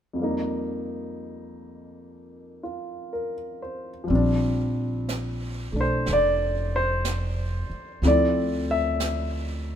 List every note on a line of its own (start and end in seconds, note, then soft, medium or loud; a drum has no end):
0.13 4.08 F2 soft
0.13 4.02 F3 soft
0.19 4.06 G3 soft
0.19 4.12 A#3 soft
0.24 4.13 D#4 soft
2.63 3.33 F4 soft
3.13 3.90 A#4 soft
3.62 4.31 C5 soft
4.04 8.00 F3 soft
4.04 8.01 G3 soft
4.10 5.69 A#1 medium
4.10 8.03 C4 soft
4.10 brush sweep soft
4.15 5.74 D4 soft
5.09 brush sweep soft
5.09 snare soft
5.09 hi-hat pedal soft
5.72 6.05 B1 soft
5.72 8.02 A3 soft
5.72 8.04 D4 soft
5.81 6.12 C5 medium
6.06 7.65 F1 medium
6.06 brush sweep soft
6.06 snare soft
6.13 6.76 D5 medium
6.76 7.67 C5 medium
7.05 brush sweep soft
7.05 snare soft
7.05 hi-hat pedal soft
7.70 muted upright bass stroke soft
8.02 9.76 D2 medium
8.02 9.76 F3 soft
8.02 9.76 A3 soft
8.02 9.76 C4 soft
8.02 9.76 E4 soft
8.02 brush sweep soft
8.02 snare soft
8.07 8.66 D5 medium
8.71 9.76 E5 medium
9.00 brush sweep soft
9.00 snare soft
9.00 hi-hat pedal soft